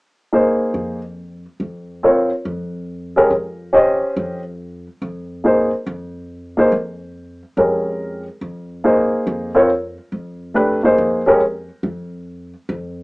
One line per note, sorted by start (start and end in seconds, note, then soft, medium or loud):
0.33 0.98 A#3 soft
0.33 0.98 D#4 soft
0.33 0.98 G#4 soft
0.33 0.98 C5 soft
0.74 1.44 F2 medium
1.60 2.30 F2 medium
2.03 2.29 C4 soft
2.03 2.29 F4 soft
2.03 2.29 A#4 soft
2.03 2.29 C#5 soft
2.45 3.15 F2 medium
3.16 3.30 G#3 medium
3.16 3.30 C#4 soft
3.16 3.30 G4 soft
3.16 3.30 A#4 medium
3.30 4.00 F2 medium
3.73 4.38 C#4 medium
3.73 4.38 G4 soft
3.73 4.39 C5 soft
3.73 4.39 D#5 medium
4.16 4.86 F2 medium
5.02 5.71 F2 medium
5.44 5.69 A#3 soft
5.44 5.70 D#4 soft
5.44 5.70 G#4 soft
5.44 5.70 C5 soft
5.86 6.56 F2 medium
6.57 6.71 A#3 soft
6.57 6.71 D#4 soft
6.57 6.71 G#4 soft
6.57 6.71 C5 medium
6.72 7.42 F2 medium
7.57 8.27 F2 medium
7.57 8.22 G#3 soft
7.57 8.23 C#4 soft
7.57 8.23 G4 soft
7.57 8.23 A#4 soft
8.41 9.11 F2 medium
8.84 9.50 A#3 soft
8.84 9.50 D#4 soft
8.84 9.50 G#4 soft
8.84 9.50 C5 medium
9.27 9.97 F2 medium
9.55 9.68 C4 soft
9.55 9.69 F4 soft
9.55 9.69 A#4 soft
9.55 9.69 C#5 medium
10.12 10.82 F2 medium
10.54 10.80 A3 medium
10.54 10.80 D4 soft
10.54 10.80 G4 soft
10.54 10.81 B4 medium
10.83 11.20 A#3 soft
10.83 11.21 D#4 soft
10.83 11.21 G#4 soft
10.83 11.21 C5 medium
10.98 11.67 F2 medium
11.26 11.39 G#3 medium
11.26 11.40 C#4 soft
11.26 11.40 G4 soft
11.26 11.40 A#4 medium
11.83 12.52 F2 medium
12.69 13.03 F2 medium